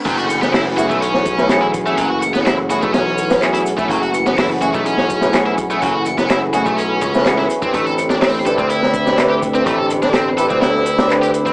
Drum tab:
CC |x---------------|----------------|----------------|----------------|
HH |xxx-o-x-x-x-x-x-|x-x-x-x-x-xx-xx-|xxx-o-x-x-x-x-x-|x-x-x-x-x-x-x-x-|
SH |x-xxx-xxx-xxx-xx|x-xxx-xxx-xxx-xx|x-xxx-xxx-xxx-xx|x-xxx-xxx-xxx-xx|
CP |----x-------x---|----x-------x---|----x-------x---|----x-------x---|
SD |---oo----o-oo---|---oo---oo-oo---|---oo----o-oo---|---oo------ooo--|
BD |o------o--o---o-|o------o-------o|o------o--o---o-|o------o--o----o|

CC |----------------|----------------|
HH |xxx-o-x-x-x-x-x-|x-x-x-x-x-xx-xx-|
SH |x-xxx-xxx-xxx-xx|x-xxx-xxx-xxx-xx|
CP |----x-------x---|----x-------x---|
SD |---oo----o-oo---|---oo---oo-oo---|
BD |o------o--o---o-|o------o-------o|